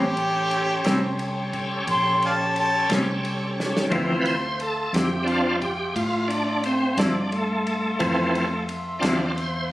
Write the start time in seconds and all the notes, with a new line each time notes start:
Already playing: A1 C#4 G4 A4 C#5 G5 C6
0.17 ride
0.51 ride
0.84 C2 A2 G3 C4 C#4, snare, ride
1.19 ride
1.53 kick, ride
1.87 A#1 C6, kick, ride
2.22 D5 F5 A5, ride
2.56 A5, ride
2.89 C2 A2 G3 C4 C#4, snare, ride
3.25 ride
3.60 snare
3.77 snare
3.89 D2 D3 E3 F3 C4 E4 E5 F5 C6, kick, ride
4.21 B4
4.26 C5, ride
4.60 A4, ride
4.93 F2 D3 F3 C4 E4 G4, snare, ride
5.23 F3 C4 D4 F4
5.27 ride
5.62 G4, kick, ride
5.96 A2 F4, kick, ride
6.28 D4, ride
6.64 C4, ride
6.97 G2 F3 C4 D4 E4, snare, ride
7.01 D3
7.32 A3, ride
7.67 ride
7.99 F2 E3 F3 C4, kick, ride
8.35 ride
8.69 ride
8.99 E2 C4 D4 F4, ride
9.03 D3 F3 C4 E4, snare
9.36 C5, ride